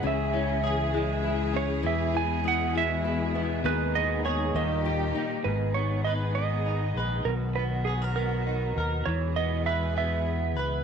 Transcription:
0.00 1.84 C#2 medium
0.00 1.81 C#3 medium
0.00 1.83 C#3 medium
0.00 1.81 E3 medium
0.00 0.94 G#3 medium
0.00 1.71 G#3 medium
0.00 3.60 G#3 medium
0.00 0.62 C#4 medium
0.00 3.60 E4 medium
0.00 4.51 G#4 medium
0.00 1.23 G#4 medium
0.07 1.60 E5 medium
0.33 1.53 C#4 medium
0.33 0.93 E4 medium
0.63 1.52 C#4 medium
0.63 2.45 G#4 medium
0.94 2.75 G#3 medium
0.94 1.90 E4 medium
1.24 1.90 E4 medium
1.24 1.83 G#4 medium
1.53 1.83 C#4 medium
1.53 1.90 C#4 medium
1.53 1.86 C#5 medium
1.83 3.61 E2 loud
1.83 4.52 B2 medium
1.83 3.64 E3 medium
1.83 3.63 E3 medium
1.83 2.44 B3 medium
1.83 3.04 G#4 medium
1.83 2.16 E5 medium
2.14 3.34 B3 medium
2.14 2.74 E4 medium
2.14 2.43 G#5 medium
2.44 3.34 B3 medium
2.44 3.71 G#4 medium
2.44 2.74 F#5 loud
2.75 3.71 G#3 medium
2.75 3.71 E4 medium
2.75 3.69 E5 medium
3.04 3.70 E4 medium
3.04 3.64 G#4 medium
3.35 3.71 B3 medium
3.35 3.64 B3 medium
3.64 4.51 D#2 medium
3.64 4.55 D#3 medium
3.64 5.44 D#3 medium
3.64 4.55 G#3 medium
3.64 4.25 B3 medium
3.64 4.55 D#4 medium
3.64 4.61 G#4 medium
3.64 3.96 B4 medium
3.95 4.61 B3 medium
3.95 6.01 D#4 medium
3.95 4.25 D#5 medium
4.25 4.55 B3 medium
4.25 4.61 G#4 medium
4.25 4.56 C#5 medium
4.54 5.11 D#2 loud
4.54 5.45 A#2 medium
4.54 8.05 D#3 medium
4.54 5.45 G3 medium
4.54 5.14 A#3 medium
4.54 5.45 D#4 medium
4.54 5.45 G4 medium
4.54 5.19 D#5 medium
4.86 5.51 G4 medium
4.86 5.52 G4 medium
5.15 5.51 A#3 medium
5.15 5.76 D#4 medium
5.44 6.92 G#1 medium
5.44 7.26 G#2 medium
5.44 9.04 D#3 soft
5.44 7.25 G#3 soft
5.44 7.24 B3 soft
5.44 7.25 D#4 medium
5.44 7.25 G#4 medium
5.44 5.73 B4 medium
5.74 6.37 B3 soft
5.74 6.04 C#5 medium
6.04 6.97 B4 medium
6.04 6.13 D#5 medium
6.35 7.57 B3 medium
6.35 7.28 D#5 medium
6.66 8.46 D#4 medium
6.95 7.24 A#1 medium
6.95 7.87 B4 medium
7.25 8.72 B1 medium
7.25 9.08 B2 medium
7.25 9.05 F#3 medium
7.25 9.05 B3 medium
7.25 9.05 F#4 medium
7.25 7.33 A#4 medium
7.56 8.17 B3 medium
7.56 7.64 B4 medium
7.85 7.93 G#4 medium
7.85 8.02 G#4 medium
8.02 8.77 A#4 soft
8.16 9.13 B3 soft
8.16 8.80 A#4 medium
8.47 10.84 D#4 soft
8.76 9.05 D#2 medium
8.76 9.14 A#4 medium
9.06 10.56 E2 loud
9.06 10.84 B2 medium
9.06 10.84 E3 medium
9.06 10.84 G#3 medium
9.06 10.84 G#4 medium
9.06 9.34 C#5 medium
9.36 9.95 B3 medium
9.36 9.66 D#5 medium
9.66 10.55 B4 medium
9.66 9.96 E5 medium
9.97 10.84 B3 medium
9.97 10.84 E5 medium
10.56 10.84 C#2 medium
10.56 10.84 B4 medium

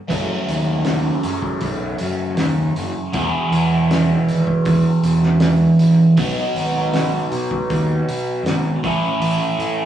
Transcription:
0.08 0.26 F#1 loud
0.08 3.10 F#2 medium
0.08 3.11 C#3 medium
0.08 3.11 F#3 medium
0.08 3.11 A3 loud
0.08 3.12 C#4 medium
0.08 3.12 A4 loud
0.08 kick loud
0.08 open hi-hat medium
0.48 1.10 D#2 medium
0.48 open hi-hat medium
0.85 snare loud
0.85 open hi-hat medium
1.23 1.39 F#2 medium
1.23 open hi-hat medium
1.42 kick medium
1.61 1.93 B1 medium
1.61 kick loud
1.61 open hi-hat medium
1.98 2.38 F#2 medium
1.98 open hi-hat medium
2.37 2.69 D#2 loud
2.37 snare loud
2.37 open hi-hat medium
2.76 2.91 F#1 medium
2.76 open hi-hat medium
3.13 3.29 E1 loud
3.13 6.15 E2 medium
3.13 6.15 B2 medium
3.13 6.15 E3 loud
3.13 6.15 B3 loud
3.13 6.16 E4 medium
3.13 6.16 G#4 loud
3.13 kick loud
3.13 open hi-hat medium
3.51 4.13 E2 loud
3.51 open hi-hat medium
3.91 snare loud
3.91 open hi-hat medium
4.27 4.43 G#1 medium
4.27 open hi-hat soft
4.47 kick medium
4.65 4.81 E2 medium
4.65 kick loud
4.65 open hi-hat medium
5.03 5.65 E1 medium
5.03 open hi-hat medium
5.23 snare soft
5.40 snare medium
5.40 open hi-hat medium
5.79 5.95 A1 medium
5.79 open hi-hat medium
6.17 6.33 B1 loud
6.17 8.81 B2 loud
6.17 8.81 F#3 medium
6.17 8.81 B3 loud
6.17 8.81 D#4 loud
6.17 8.82 F#4 loud
6.17 kick loud
6.17 open hi-hat medium
6.54 7.16 G#1 medium
6.54 open hi-hat medium
6.94 snare loud
6.94 open hi-hat medium
7.31 7.47 B2 medium
7.31 open hi-hat medium
7.51 kick medium
7.70 8.00 D#2 medium
7.70 kick loud
7.70 open hi-hat medium
8.07 8.45 B2 medium
8.07 open hi-hat medium
8.43 8.75 G#1 loud
8.43 snare loud
8.43 open hi-hat medium
8.83 8.99 A1 medium
8.83 9.85 A2 medium
8.83 9.85 E3 medium
8.83 9.85 A3 medium
8.83 9.85 C#4 medium
8.83 9.85 E4 loud
8.83 kick loud
8.83 open hi-hat medium
9.20 9.36 A1 loud
9.20 open hi-hat medium
9.59 9.85 A2 medium
9.59 open hi-hat medium

